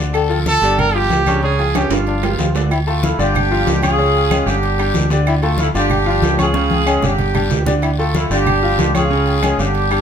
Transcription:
Already playing: D2 D3
0.00 D4 D5
0.14 A4, high conga, low agogo, long guiro, claves
0.29 F3 F4 A4, high conga, low agogo
0.46 A4, high conga, low timbale, short guiro
0.61 G1 D3 D4 G4 D5, high conga, low agogo, short guiro
0.79 A#4, high conga, low conga, low agogo, long guiro, claves
0.94 F3 F4 G4, high conga
1.09 C#2, high conga, low timbale, low agogo, short guiro
1.26 C#3 C#4 D4 C#5, high conga, low agogo, short guiro, claves
1.43 C#3 C#4 G#4 C#5, long guiro
1.59 F3 F4 G#4, high conga, low agogo
1.75 C#4 G4, high conga, high timbale, low agogo, short guiro, claves
1.89 G1 F3 F4 G4, high conga, high timbale, short guiro
2.07 D4, high conga, low agogo, long guiro
2.23 F3 F4 G4, high conga, low timbale, low agogo, claves
2.38 D2 F4, high conga, low timbale, short guiro
2.55 D3 D4 D5, high conga, low timbale, low agogo, short guiro
2.71 E4, high conga, low agogo, long guiro, claves
2.87 A3 F4 A4 A5, high conga, low agogo
3.03 F3 A3 E4 F4 F5, high conga, low timbale, short guiro
3.18 G1 D3 D4 F4 G4 D5, high conga, low agogo, short guiro
3.35 high conga, low conga, low agogo, long guiro, claves
3.51 F3 F4 F5, high conga
3.67 C#2, high conga, low timbale, low agogo, short guiro
3.83 C#4 F4 G#4 C#5 C#6, high conga, low agogo, short guiro, claves
3.98 C#3 C#4 C#5, high conga, long guiro
4.15 high conga, low agogo
4.31 G#3 C#4 G#4 G#5, high conga, low timbale, low agogo, short guiro, claves
4.46 G1 D3 D4 G4 F5 D6, high conga, short guiro
4.63 high conga, low agogo, long guiro
4.78 G3 D4 G4 G5, high conga, low agogo, claves
4.94 D2, high conga, low timbale, short guiro
5.10 D3 D4 G4 D5, high conga, low agogo, short guiro
5.26 E4, high conga, low agogo, long guiro, claves
5.42 A3 F4 A4 A5, high conga, low agogo
5.58 F3 A3 E4 F4 F5, high conga, low timbale, short guiro
5.74 G1 D3 D4 F4 G4 D5, high conga, low agogo, short guiro
5.90 high conga, low conga, low agogo, long guiro, claves
6.06 F3 F4 F5, high conga
6.22 C#2, high conga, low timbale, low agogo, short guiro
6.38 C#4 F4 G#4 C#5 C#6, high conga, low agogo, short guiro, claves
6.54 C#3 C#4 C#5, high conga, long guiro
6.71 high conga, low agogo
6.86 G#3 C#4 G#4 G#5, low timbale, low agogo, short guiro, claves
7.02 G1 D3 D4 G4 F5 D6, low conga, short guiro
7.18 low conga, low agogo, long guiro
7.34 G3 D4 G4 G5, low conga, low agogo, claves
7.49 D2, low conga, low timbale, short guiro
7.66 D3 D4 G4 D5, low conga, low agogo, short guiro
7.82 E4, high conga, low agogo, long guiro, claves
7.99 A3 F4 A4 A5, high conga, low agogo
8.15 F3 A3 E4 F4 F5, high conga, low timbale, short guiro
8.30 G1 D3 D4 F4 G4 D5, high conga, low agogo, short guiro
8.46 high conga, low conga, low agogo, long guiro, claves
8.63 F3 F4 F5, high conga
8.78 C#2, high conga, low timbale, low agogo, short guiro
8.94 C#4 F4 G#4 C#5 C#6, high conga, low agogo, short guiro, claves
9.10 C#3 C#4 C#5, high conga, long guiro
9.27 high conga, low agogo
9.42 G#3 C#4 G#4 G#5, high conga, low timbale, low agogo, short guiro, claves
9.58 G1 D3 D4 G4 F5 D6, high conga, short guiro
9.74 high conga, low agogo, long guiro
9.91 G3 D4 G4 G5, high conga, low agogo, claves

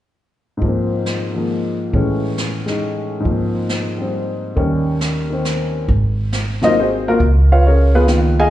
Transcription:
0.57 G#2 F3
0.62 A#3, brush sweep, kick
0.68 C4
1.06 snare, hi-hat pedal
1.35 F3 G#3 A#3
1.93 A2 E3 G#3 C#4, brush sweep, kick
2.38 snare, hi-hat pedal
2.66 G#3 D#4, snare
3.20 G#2 F3
3.25 A#3, brush sweep, kick
3.31 C4
3.69 snare, hi-hat pedal
3.98 G3 C4
4.56 D#2 D#3 G3 C#4, brush sweep, kick
5.01 snare, hi-hat pedal
5.30 D#3 C4
5.45 snare, hi-hat pedal
5.88 G#1, brush sweep, kick
6.33 snare, hi-hat pedal
6.62 C3 F#3 A#3 D#4 F4 A#4 C5 D#5, snare
6.80 C4 F#4 G#4 C5
7.08 A#3 F4 F#4 A#4
7.20 C#2, brush sweep, kick
7.52 F4 B4 C#5 F5
7.67 C#4 G#4 A#4 C#5
7.95 B3 F4 G#4 B4
8.07 D#3 A#3 B3 F4, snare, hi-hat pedal
8.39 G#4 D#5 F5 G#5

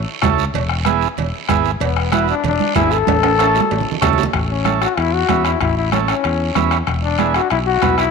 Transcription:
0.22 C#2 C#4 E4 A4, bombo low, bombo rim, cowbell, high conga, low conga, low timbale, short guiro
0.38 short guiro
0.54 E1, bombo low, cowbell, low conga, long guiro
0.69 bombo rim
0.85 B3 E4 G#4, bombo rim, cowbell, high conga, short guiro
1.01 short guiro
1.17 E1, cowbell, low conga, long guiro
1.49 G#1 B3 E4 G#4, bombo low, bombo rim, cowbell, high conga, short guiro
1.65 short guiro
1.80 E1 B3, bombo low, cowbell, long guiro
1.97 bombo rim
2.12 B3 E4 F#4, bombo rim, cowbell, high conga, short guiro
2.28 D4, short guiro
2.44 E1 D4, cowbell, low conga, long guiro
2.60 high conga
2.75 G#1 B3 E4 G#4, bombo low, bombo rim, cowbell, high conga, low timbale, short guiro
2.91 A4, short guiro
3.07 A1, bombo low, cowbell, high conga, high timbale, long guiro
3.23 bombo rim, high timbale
3.38 C#4 E4 A4, bombo rim, cowbell, high timbale, short guiro
3.55 low timbale, short guiro
3.60 high conga
3.71 A1, cowbell, low timbale, long guiro
3.81 low conga
3.92 low conga
4.01 C#2 C#4 E4 A4, bombo low, bombo rim, cowbell, low conga, low timbale, short guiro
4.13 low conga
4.18 low timbale, short guiro
4.23 low conga
4.33 A1, bombo low, bombo rim, high conga, high timbale, long guiro
4.50 C#4
4.65 C#4 E4 A4, bombo rim, high conga, high timbale, short guiro
4.81 F#4, bombo rim, high timbale, short guiro
4.97 E2 E4, bombo rim, high conga, high timbale, long guiro
5.13 F#4
5.29 E2 C#4 E4 B4, bombo low, bombo rim, high conga, high timbale, short guiro
5.45 E4, bombo rim, high timbale, short guiro
5.61 A1 E4, bombo low, bombo rim, high conga, high timbale, long guiro
5.77 E4
5.92 C#4 E4 A4, bombo rim, high conga, high timbale, short guiro
6.08 C#4, bombo rim, high timbale, short guiro
6.24 E2, bombo rim, high conga, high timbale, long guiro
6.55 E2 C#4 E4 B4, bombo low, bombo rim, high conga, high timbale, low timbale, short guiro
6.71 bombo rim, high timbale, short guiro
6.87 E1, bombo low, bombo rim, high conga, high timbale, long guiro
7.03 D4
7.19 B3 E4 G#4, bombo rim, high conga, high timbale, short guiro
7.34 F#4, bombo rim, high timbale, short guiro
7.50 B1 E4, bombo rim, high conga, high timbale, long guiro
7.66 F#4
7.82 B1 B3 E4 B4, bombo low, bombo rim, high conga, high timbale, low timbale, short guiro
7.98 E4, bombo rim, high timbale, short guiro

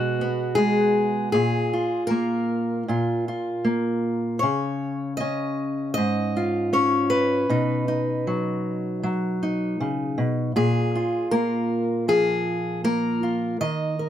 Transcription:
Already playing: B2 G#3 B3 F#4 G#4
0.21 B3
0.55 G#3 G#4
1.32 A#2 G#4
1.73 F4
2.07 A#3 A#4
2.88 A#2 F4
3.28 F4
3.65 A#3
4.39 C#3 C#5
5.17 C#4 D#5
5.94 G#2 D#5
6.37 F4
6.73 C#4 C#5
7.10 B4
7.49 B2 D#4
7.88 D#4
8.27 F#3
9.03 F#3
9.43 D#4
9.80 C#3
10.18 B2
10.56 A#2 G#4
10.95 F4
11.31 A#3 A#4
12.08 F3 G#4
12.84 A#3 A#4
13.23 F4
13.61 D#3 D#5
13.99 A#4

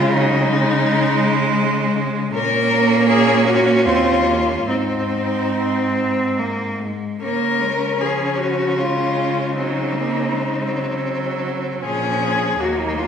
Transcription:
Already playing: C#3 G#3 F4
0.11 F#3 D#4
0.49 G#3
2.33 A#2 A#3 C#4 A#4
3.09 G#4
3.47 F#4
3.85 D#2 C4 F4
4.26 A#3
4.67 G#2 C4 D#4
5.55 C4
6.39 A#3
6.81 G#3
7.20 C#3 A#3 C#4 A#4
7.60 G#3
8.00 F3 G#4
8.39 F#4
8.78 G#3 F4
9.55 F#3 C4 D#4
9.94 A#3
10.32 G#3
10.69 F#3
11.83 A#2 F3 C#4 G#4
12.58 D#2 F#3 A#3 F#4
12.79 D#4
12.98 F4

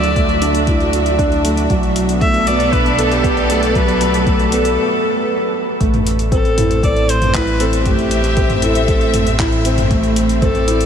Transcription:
Already playing: D2 D3 F#3 A3 D4 E4 F#4 D5 E5
0.04 closed hi-hat, mid tom
0.16 A3, kick, closed hi-hat
0.29 closed hi-hat, mid tom
0.42 D4, closed hi-hat
0.55 closed hi-hat
0.67 E4, kick, closed hi-hat
0.80 closed hi-hat
0.93 closed hi-hat
1.06 closed hi-hat
1.19 D4, kick, closed hi-hat
1.32 closed hi-hat
1.44 A3, closed hi-hat
1.57 closed hi-hat
1.70 B1 B2 F#3, kick, closed hi-hat
1.83 closed hi-hat
1.96 closed hi-hat
2.01 B3
2.09 closed hi-hat
2.21 A3 E5, kick, closed hi-hat
2.34 A4, closed hi-hat, mid tom
2.47 B3 D5, closed hi-hat
2.60 closed hi-hat
2.73 D4 B4, kick, closed hi-hat
2.77 D5
2.86 closed hi-hat
2.99 A4, closed hi-hat, mid tom
3.11 G4, closed hi-hat
3.24 B3, kick, closed hi-hat
3.37 closed hi-hat
3.49 A3 A4, closed hi-hat
3.63 closed hi-hat
3.75 F#3 B4, kick, closed hi-hat
3.88 closed hi-hat
4.01 closed hi-hat
4.14 closed hi-hat, mid tom
4.26 A3 A4, kick, closed hi-hat
4.39 closed hi-hat, mid tom
4.52 B3, closed hi-hat
4.65 closed hi-hat
5.80 A1 A2 A3, kick, closed hi-hat
5.94 closed hi-hat, mid tom
6.07 A3, closed hi-hat
6.19 closed hi-hat
6.32 C4 A4, kick, closed hi-hat
6.45 closed hi-hat
6.57 E4, closed hi-hat, mid tom
6.71 closed hi-hat
6.83 A4 D5, kick, closed hi-hat
6.96 closed hi-hat
7.09 C5, closed hi-hat
7.22 closed hi-hat, mid tom
7.34 E4 B4, kick, clap, closed hi-hat
7.47 closed hi-hat
7.54 E5
7.60 C4 A4, closed hi-hat
7.73 closed hi-hat
7.86 A3 G4, kick, closed hi-hat, mid tom
7.99 closed hi-hat
8.11 closed hi-hat
8.24 closed hi-hat
8.37 C4, kick, closed hi-hat
8.50 closed hi-hat, mid tom
8.62 E4 A4, closed hi-hat
8.75 closed hi-hat
8.88 A4, kick, closed hi-hat
9.01 closed hi-hat
9.14 closed hi-hat, mid tom
9.27 closed hi-hat
9.39 E4, kick, clap, closed hi-hat
9.52 closed hi-hat
9.65 C4, closed hi-hat
9.78 closed hi-hat, mid tom
9.91 A3, kick, closed hi-hat
10.03 closed hi-hat
10.16 closed hi-hat
10.29 closed hi-hat
10.42 C4 A4, kick, closed hi-hat, mid tom
10.48 D5
10.55 closed hi-hat
10.67 E4, closed hi-hat
10.81 closed hi-hat

